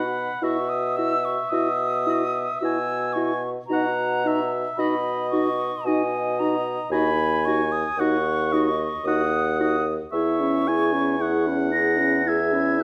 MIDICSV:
0, 0, Header, 1, 6, 480
1, 0, Start_track
1, 0, Key_signature, 5, "major"
1, 0, Tempo, 1090909
1, 187, Time_signature, 3, 2, 24, 8
1, 2105, Tempo, 1067616
1, 5723, End_track
2, 0, Start_track
2, 0, Title_t, "Flute"
2, 0, Program_c, 0, 73
2, 0, Note_on_c, 0, 83, 60
2, 186, Note_off_c, 0, 83, 0
2, 191, Note_on_c, 0, 85, 74
2, 304, Note_on_c, 0, 87, 68
2, 311, Note_off_c, 0, 85, 0
2, 424, Note_on_c, 0, 88, 73
2, 431, Note_off_c, 0, 87, 0
2, 549, Note_on_c, 0, 85, 66
2, 556, Note_off_c, 0, 88, 0
2, 659, Note_on_c, 0, 87, 78
2, 666, Note_off_c, 0, 85, 0
2, 1141, Note_on_c, 0, 88, 73
2, 1147, Note_off_c, 0, 87, 0
2, 1377, Note_on_c, 0, 85, 75
2, 1383, Note_off_c, 0, 88, 0
2, 1539, Note_off_c, 0, 85, 0
2, 1615, Note_on_c, 0, 82, 89
2, 1991, Note_off_c, 0, 82, 0
2, 2101, Note_on_c, 0, 83, 68
2, 2336, Note_off_c, 0, 83, 0
2, 2338, Note_on_c, 0, 85, 79
2, 2588, Note_on_c, 0, 80, 75
2, 2594, Note_off_c, 0, 85, 0
2, 2829, Note_on_c, 0, 82, 65
2, 2836, Note_off_c, 0, 80, 0
2, 3059, Note_off_c, 0, 82, 0
2, 3062, Note_on_c, 0, 83, 84
2, 3304, Note_on_c, 0, 85, 77
2, 3311, Note_off_c, 0, 83, 0
2, 3425, Note_on_c, 0, 87, 71
2, 3431, Note_off_c, 0, 85, 0
2, 3552, Note_on_c, 0, 85, 85
2, 3559, Note_off_c, 0, 87, 0
2, 4023, Note_on_c, 0, 87, 74
2, 4030, Note_off_c, 0, 85, 0
2, 4262, Note_off_c, 0, 87, 0
2, 4276, Note_on_c, 0, 87, 75
2, 4423, Note_off_c, 0, 87, 0
2, 4502, Note_on_c, 0, 85, 89
2, 5100, Note_off_c, 0, 85, 0
2, 5227, Note_on_c, 0, 94, 72
2, 5472, Note_on_c, 0, 92, 60
2, 5478, Note_off_c, 0, 94, 0
2, 5719, Note_off_c, 0, 92, 0
2, 5723, End_track
3, 0, Start_track
3, 0, Title_t, "Oboe"
3, 0, Program_c, 1, 68
3, 0, Note_on_c, 1, 78, 56
3, 191, Note_on_c, 1, 76, 64
3, 198, Note_off_c, 1, 78, 0
3, 1157, Note_off_c, 1, 76, 0
3, 1164, Note_on_c, 1, 80, 66
3, 1508, Note_off_c, 1, 80, 0
3, 1642, Note_on_c, 1, 78, 62
3, 1880, Note_on_c, 1, 76, 60
3, 1886, Note_off_c, 1, 78, 0
3, 2113, Note_on_c, 1, 75, 65
3, 2119, Note_off_c, 1, 76, 0
3, 2587, Note_off_c, 1, 75, 0
3, 2589, Note_on_c, 1, 75, 70
3, 3057, Note_off_c, 1, 75, 0
3, 3065, Note_on_c, 1, 80, 76
3, 3546, Note_on_c, 1, 78, 61
3, 3553, Note_off_c, 1, 80, 0
3, 3788, Note_on_c, 1, 75, 62
3, 3794, Note_off_c, 1, 78, 0
3, 4024, Note_off_c, 1, 75, 0
3, 4032, Note_on_c, 1, 78, 70
3, 4379, Note_off_c, 1, 78, 0
3, 4504, Note_on_c, 1, 76, 56
3, 4753, Note_on_c, 1, 80, 62
3, 4760, Note_off_c, 1, 76, 0
3, 4994, Note_on_c, 1, 78, 62
3, 5001, Note_off_c, 1, 80, 0
3, 5479, Note_on_c, 1, 76, 62
3, 5486, Note_off_c, 1, 78, 0
3, 5723, Note_off_c, 1, 76, 0
3, 5723, End_track
4, 0, Start_track
4, 0, Title_t, "Clarinet"
4, 0, Program_c, 2, 71
4, 191, Note_on_c, 2, 66, 52
4, 261, Note_off_c, 2, 66, 0
4, 431, Note_on_c, 2, 66, 49
4, 501, Note_off_c, 2, 66, 0
4, 674, Note_on_c, 2, 66, 50
4, 744, Note_off_c, 2, 66, 0
4, 917, Note_on_c, 2, 66, 45
4, 987, Note_off_c, 2, 66, 0
4, 1151, Note_on_c, 2, 66, 51
4, 1222, Note_off_c, 2, 66, 0
4, 1393, Note_on_c, 2, 66, 48
4, 1463, Note_off_c, 2, 66, 0
4, 1628, Note_on_c, 2, 66, 52
4, 1698, Note_off_c, 2, 66, 0
4, 1869, Note_on_c, 2, 66, 48
4, 1940, Note_off_c, 2, 66, 0
4, 2106, Note_on_c, 2, 66, 55
4, 2178, Note_off_c, 2, 66, 0
4, 2350, Note_on_c, 2, 66, 51
4, 2422, Note_off_c, 2, 66, 0
4, 2592, Note_on_c, 2, 66, 52
4, 2664, Note_off_c, 2, 66, 0
4, 2829, Note_on_c, 2, 66, 50
4, 2901, Note_off_c, 2, 66, 0
4, 3067, Note_on_c, 2, 66, 59
4, 3139, Note_off_c, 2, 66, 0
4, 3312, Note_on_c, 2, 66, 54
4, 3384, Note_off_c, 2, 66, 0
4, 3553, Note_on_c, 2, 66, 55
4, 3625, Note_off_c, 2, 66, 0
4, 3796, Note_on_c, 2, 66, 49
4, 3868, Note_off_c, 2, 66, 0
4, 4033, Note_on_c, 2, 66, 53
4, 4105, Note_off_c, 2, 66, 0
4, 4269, Note_on_c, 2, 66, 50
4, 4341, Note_off_c, 2, 66, 0
4, 4512, Note_on_c, 2, 68, 50
4, 4633, Note_on_c, 2, 64, 44
4, 4639, Note_off_c, 2, 68, 0
4, 4754, Note_on_c, 2, 68, 47
4, 4761, Note_off_c, 2, 64, 0
4, 4872, Note_on_c, 2, 64, 43
4, 4878, Note_off_c, 2, 68, 0
4, 4986, Note_off_c, 2, 64, 0
4, 4989, Note_on_c, 2, 68, 50
4, 5111, Note_on_c, 2, 64, 42
4, 5118, Note_off_c, 2, 68, 0
4, 5230, Note_on_c, 2, 68, 45
4, 5237, Note_off_c, 2, 64, 0
4, 5348, Note_on_c, 2, 64, 43
4, 5355, Note_off_c, 2, 68, 0
4, 5468, Note_off_c, 2, 64, 0
4, 5472, Note_on_c, 2, 68, 44
4, 5592, Note_on_c, 2, 64, 45
4, 5599, Note_off_c, 2, 68, 0
4, 5721, Note_off_c, 2, 64, 0
4, 5723, End_track
5, 0, Start_track
5, 0, Title_t, "French horn"
5, 0, Program_c, 3, 60
5, 184, Note_on_c, 3, 64, 52
5, 254, Note_off_c, 3, 64, 0
5, 432, Note_on_c, 3, 64, 44
5, 502, Note_off_c, 3, 64, 0
5, 670, Note_on_c, 3, 64, 51
5, 740, Note_off_c, 3, 64, 0
5, 909, Note_on_c, 3, 64, 49
5, 979, Note_off_c, 3, 64, 0
5, 1155, Note_on_c, 3, 64, 50
5, 1225, Note_off_c, 3, 64, 0
5, 1390, Note_on_c, 3, 64, 48
5, 1461, Note_off_c, 3, 64, 0
5, 1627, Note_on_c, 3, 63, 52
5, 1698, Note_off_c, 3, 63, 0
5, 1870, Note_on_c, 3, 63, 47
5, 1940, Note_off_c, 3, 63, 0
5, 2107, Note_on_c, 3, 63, 52
5, 2179, Note_off_c, 3, 63, 0
5, 2348, Note_on_c, 3, 63, 49
5, 2420, Note_off_c, 3, 63, 0
5, 2594, Note_on_c, 3, 63, 53
5, 2666, Note_off_c, 3, 63, 0
5, 2832, Note_on_c, 3, 63, 51
5, 2904, Note_off_c, 3, 63, 0
5, 3075, Note_on_c, 3, 63, 59
5, 3147, Note_off_c, 3, 63, 0
5, 3310, Note_on_c, 3, 63, 49
5, 3382, Note_off_c, 3, 63, 0
5, 3554, Note_on_c, 3, 63, 55
5, 3626, Note_off_c, 3, 63, 0
5, 3790, Note_on_c, 3, 63, 51
5, 3862, Note_off_c, 3, 63, 0
5, 4030, Note_on_c, 3, 63, 53
5, 4102, Note_off_c, 3, 63, 0
5, 4272, Note_on_c, 3, 63, 49
5, 4344, Note_off_c, 3, 63, 0
5, 4516, Note_on_c, 3, 64, 52
5, 4632, Note_on_c, 3, 61, 44
5, 4639, Note_off_c, 3, 64, 0
5, 4758, Note_on_c, 3, 64, 49
5, 4765, Note_off_c, 3, 61, 0
5, 4870, Note_on_c, 3, 61, 43
5, 4876, Note_off_c, 3, 64, 0
5, 4983, Note_off_c, 3, 61, 0
5, 4986, Note_on_c, 3, 64, 47
5, 5114, Note_on_c, 3, 61, 43
5, 5121, Note_off_c, 3, 64, 0
5, 5225, Note_on_c, 3, 64, 42
5, 5231, Note_off_c, 3, 61, 0
5, 5343, Note_on_c, 3, 61, 44
5, 5350, Note_off_c, 3, 64, 0
5, 5463, Note_off_c, 3, 61, 0
5, 5466, Note_on_c, 3, 64, 47
5, 5586, Note_on_c, 3, 61, 41
5, 5593, Note_off_c, 3, 64, 0
5, 5704, Note_on_c, 3, 64, 45
5, 5710, Note_off_c, 3, 61, 0
5, 5723, Note_off_c, 3, 64, 0
5, 5723, End_track
6, 0, Start_track
6, 0, Title_t, "Bassoon"
6, 0, Program_c, 4, 70
6, 0, Note_on_c, 4, 47, 56
6, 132, Note_off_c, 4, 47, 0
6, 186, Note_on_c, 4, 47, 60
6, 612, Note_off_c, 4, 47, 0
6, 667, Note_on_c, 4, 47, 62
6, 1097, Note_off_c, 4, 47, 0
6, 1157, Note_on_c, 4, 47, 58
6, 1576, Note_off_c, 4, 47, 0
6, 1632, Note_on_c, 4, 47, 65
6, 2052, Note_off_c, 4, 47, 0
6, 2104, Note_on_c, 4, 47, 61
6, 2527, Note_off_c, 4, 47, 0
6, 2581, Note_on_c, 4, 47, 67
6, 3005, Note_off_c, 4, 47, 0
6, 3056, Note_on_c, 4, 39, 66
6, 3483, Note_off_c, 4, 39, 0
6, 3539, Note_on_c, 4, 39, 66
6, 3964, Note_off_c, 4, 39, 0
6, 4020, Note_on_c, 4, 39, 64
6, 4445, Note_off_c, 4, 39, 0
6, 4505, Note_on_c, 4, 40, 62
6, 5723, Note_off_c, 4, 40, 0
6, 5723, End_track
0, 0, End_of_file